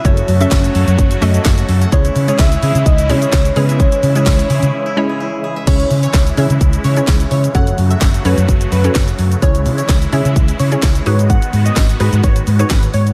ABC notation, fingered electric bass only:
X:1
M:4/4
L:1/16
Q:1/4=128
K:C#m
V:1 name="Fingered electric bass" clef=bass
F,,,2 F,,2 F,,,2 F,, F,, F,,,2 F,,2 F,,,2 F,,2 | C,,2 C,2 C,,2 C, C, C,,2 C,2 C,,2 C,2- | C,2 C,2 C,,2 C, C, z8 | C,,2 C,2 C,,2 C, C, C,,2 C,2 C,,2 C,2 |
F,,,2 F,,2 F,,,2 F,, F,, F,,,2 F,,2 F,,,2 F,,2 | C,,2 C,2 C,,2 C, C, C,,2 C,2 C,,2 G,,2- | G,,2 G,,2 G,,,2 G,, G,, G,,,2 G,,2 G,,,2 G,,2 |]